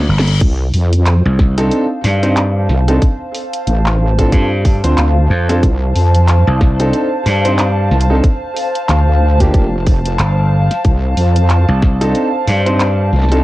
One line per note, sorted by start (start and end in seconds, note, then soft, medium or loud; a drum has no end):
0.00 reverse cymbal medium
0.09 0.39 G1 medium
0.19 snare loud
0.27 closed hi-hat medium
0.41 0.72 C2 loud
0.41 13.44 C5 medium
0.41 kick loud
0.41 closed hi-hat medium
0.41 crash medium
0.74 1.22 F2 loud
0.74 open hi-hat medium
0.93 closed hi-hat medium
1.06 clap loud
1.06 closed hi-hat medium
1.16 13.44 F5 medium
1.25 1.69 C2 medium
1.39 kick loud
1.39 snare medium
1.58 1.83 C4 medium
1.58 1.83 D4 medium
1.58 1.83 D#4 medium
1.58 1.83 A4 loud
1.58 13.44 A5 medium
1.58 closed hi-hat medium
1.71 closed hi-hat medium
2.04 2.67 G2 loud
2.04 snare medium
2.04 open hi-hat medium
2.23 2.37 C4 medium
2.23 2.37 D4 medium
2.23 2.37 D#4 medium
2.23 2.37 C5 loud
2.23 closed hi-hat medium
2.37 clap loud
2.37 closed hi-hat medium
2.69 3.00 C2 loud
2.69 snare soft
2.88 3.00 C4 medium
2.88 3.00 D4 medium
2.88 3.00 D#4 medium
2.88 3.00 A4 loud
2.88 closed hi-hat medium
3.02 kick loud
3.02 closed hi-hat medium
3.34 open hi-hat medium
3.53 closed hi-hat medium
3.67 4.30 A1 loud
3.67 closed hi-hat medium
3.86 clap loud
4.19 4.44 C4 loud
4.19 4.44 D4 medium
4.19 4.44 F4 medium
4.19 4.44 A4 loud
4.19 kick medium
4.19 closed hi-hat medium
4.32 4.81 G2 loud
4.32 kick loud
4.32 closed hi-hat medium
4.65 kick loud
4.65 open hi-hat medium
4.84 4.95 D2 loud
4.84 4.98 C4 medium
4.84 4.98 D4 medium
4.84 4.98 F4 medium
4.84 4.98 C5 loud
4.84 closed hi-hat medium
4.97 5.28 D2 loud
4.97 clap loud
4.97 closed hi-hat medium
5.30 5.61 F2 loud
5.49 5.61 C4 medium
5.49 5.61 D4 medium
5.49 5.61 F4 medium
5.49 5.61 A4 loud
5.49 snare soft
5.49 closed hi-hat medium
5.63 5.93 C2 loud
5.63 kick loud
5.63 closed hi-hat medium
5.95 6.44 F2 medium
5.95 open hi-hat medium
6.14 closed hi-hat medium
6.28 clap loud
6.28 closed hi-hat medium
6.47 6.91 C2 loud
6.61 kick loud
6.61 snare medium
6.79 7.05 C4 loud
6.79 7.05 D4 medium
6.79 7.05 D#4 medium
6.79 7.05 A4 loud
6.79 closed hi-hat medium
6.93 closed hi-hat medium
7.26 7.89 G2 loud
7.26 snare soft
7.26 open hi-hat medium
7.45 7.59 C4 medium
7.45 7.59 D4 medium
7.45 7.59 D#4 medium
7.45 7.59 C5 loud
7.45 closed hi-hat medium
7.59 clap loud
7.59 closed hi-hat medium
7.91 8.21 C2 loud
7.91 snare soft
8.01 closed hi-hat medium
8.10 8.22 C4 medium
8.10 8.22 D4 medium
8.10 8.22 D#4 medium
8.10 8.22 A4 loud
8.24 kick loud
8.24 closed hi-hat medium
8.57 open hi-hat medium
8.75 closed hi-hat medium
8.89 9.52 D2 loud
8.89 clap loud
8.89 closed hi-hat medium
9.40 9.66 A#3 medium
9.40 9.66 D4 medium
9.40 9.66 F4 medium
9.40 9.66 G4 loud
9.40 kick medium
9.40 closed hi-hat medium
9.54 10.17 F1 loud
9.54 kick loud
9.54 closed hi-hat medium
9.87 kick loud
9.87 open hi-hat medium
10.06 closed hi-hat medium
10.19 10.68 G1 loud
10.19 clap loud
10.19 closed hi-hat medium
10.71 snare soft
10.71 closed hi-hat medium
10.84 11.15 C2 loud
10.84 kick loud
10.84 closed hi-hat medium
11.17 11.66 F2 medium
11.17 open hi-hat medium
11.36 closed hi-hat medium
11.50 clap loud
11.50 closed hi-hat medium
11.69 12.13 C2 loud
11.82 kick loud
11.82 snare soft
12.01 12.27 C4 medium
12.01 12.27 D4 medium
12.01 12.27 D#4 medium
12.01 12.27 A4 loud
12.01 closed hi-hat medium
12.15 closed hi-hat medium
12.47 13.11 G2 loud
12.47 snare soft
12.47 open hi-hat medium
12.66 12.80 C4 medium
12.66 12.80 D4 medium
12.66 12.80 D#4 medium
12.66 12.80 C5 loud
12.66 closed hi-hat medium
12.80 clap loud
12.80 closed hi-hat medium
13.13 13.43 C2 loud
13.13 snare soft
13.16 snare soft
13.19 snare soft
13.22 snare soft
13.29 13.44 C4 medium
13.29 13.44 D4 medium
13.29 13.44 D#4 medium
13.29 13.44 A4 loud
13.29 snare soft
13.29 closed hi-hat medium